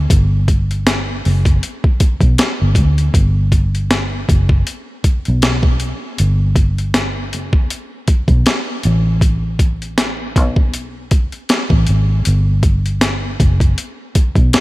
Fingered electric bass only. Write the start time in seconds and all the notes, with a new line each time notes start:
0.11 G1
1.26 F#1
2.01 muted fingered electric bass stroke
2.22 B1
2.62 G1
2.76 D2
3.15 G1
4.30 F#1
5.05 muted fingered electric bass stroke
5.28 B1
6.20 G1
7.34 F#1
8.09 muted fingered electric bass stroke
8.29 B1
8.85 A1
10.37 B1
11.71 A1
11.89 G#1
12.27 G1
13.41 F#1
14.16 muted fingered electric bass stroke
14.37 B1
14.55 muted fingered electric bass stroke